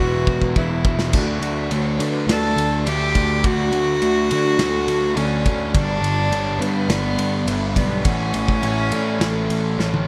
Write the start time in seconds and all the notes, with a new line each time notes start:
Already playing: E1 E3 F#3 B3 E4 F#4 B4
0.00 E2 B2
0.27 E1, kick
0.42 kick
0.55 E1 E2 B2 E3 F#3 B3 E4 E5, kick
0.84 E1 E2 B2 E3 F#3 B3 E4 E5, kick
0.99 snare
1.12 D2 D3 F#3 A3 D4 F#4 D5, kick, splash, crash
1.40 D2, ride
1.70 D2 D3 F#3 A3 D4 C#5, ride
1.99 D3 F#3 A3 D4 B4, ride
2.27 D2 D3 F#3 A3 D4 D5, snare, ride
2.31 A4
2.56 D2, ride
2.86 D2 D3 F#3 A3 D4 G4 E5, ride
3.15 D2 D3 F#3 A3 D4 D5, kick, ride
3.43 D2 D3 F#3 A3 D4 F#4 F#5, kick, ride
3.72 D2, ride
4.01 D2 D3 F#3 A3 D4 E5, ride
4.30 D3 F#3 A3 D4 D5, ride
4.57 D2 D3 F#3 A3 D4 A4, snare, ride
4.88 D2, ride
5.16 D2 D3 F#3 A3 C#4 D4 D5, ride
5.44 D2 D3 F#3 A3 D4 D5, kick, ride
5.74 G1 G2 D3 G3 B3 D4 D5, kick, ride
6.02 G1, ride
6.29 G1 G2 D3 G3 B3 D4 C#5, ride
6.59 G2 D3 G3 B3 D4 B4, ride
6.87 G1 G2 D3 G3 B3 D4 D5, snare, ride
7.18 G1, ride
7.46 G1 G2 D3 G3 B3 D4 E5, ride
7.74 B1 G2 D3 G3 B3 D4 D5, kick, ride
8.03 A1 A2 E3 A3 C#4 E4 F#5, kick, ride
8.34 A1, ride
8.48 kick
8.61 A1 A2 E3 A3 C#4 E4 E5, ride
8.89 A2 E3 A3 C#4 E4 D5, ride
9.19 A1 A2 E3 A3 C#4 E4 A4, snare, ride
9.50 A1, ride
9.78 A1 A2 E3 A3 C#4 E4 C#5, snare
9.94 high tom